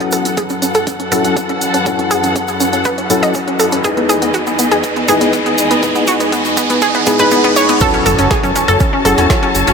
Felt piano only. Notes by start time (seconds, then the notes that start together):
Already playing: F#3 C#4 E4 A4
1.12 F#3 C#4 E4 A4
1.86 F#3 C#4 E4 A4
3.10 F#3 C#4 E4 A4
3.84 G#3 D#4 E4 B4
5.08 G#3 D#4 E4 B4
5.83 G#3 D#4 E4 B4
7.07 G#3 D#4 E4 G#4
7.19 G#3 D#4 E4 B4
7.81 F#3 C#4 E4 A4
9.05 F#3 C#4 E4 G#4
9.18 F#3 C#4 E4 A4